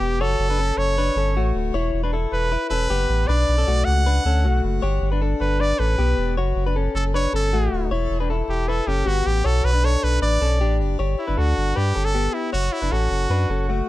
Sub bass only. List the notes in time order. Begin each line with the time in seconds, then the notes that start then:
0.00 E1
0.19 F#1
0.39 F#1
0.77 F#1
1.15 G1
1.35 A1
1.54 D1
1.73 E1
1.93 E1
2.32 E1
2.70 E1
2.90 F#1
3.09 A1
3.29 B1
3.48 B1
3.67 B1
3.87 C#2
4.25 D2
4.44 B1
4.64 F#1
4.83 G1
5.01 G1
5.40 G1
5.79 A1
5.98 B1
6.17 E1
6.37 F#1
6.56 F#1
6.94 F#1
7.33 G1
7.52 A1
7.72 D1
7.90 E1
8.10 E1
8.48 E1
8.87 F#1
9.06 G1
9.26 A1
9.45 B1
9.64 B1
10.03 B1
10.22 A1
10.41 B1
10.60 A1
10.80 F#1
10.99 G1
11.29 G1
11.38 D2
11.57 G1
11.77 G2
11.96 G1
12.53 F#1
12.82 F#1
12.92 A1
13.11 F#1
13.29 F#2
13.49 F#1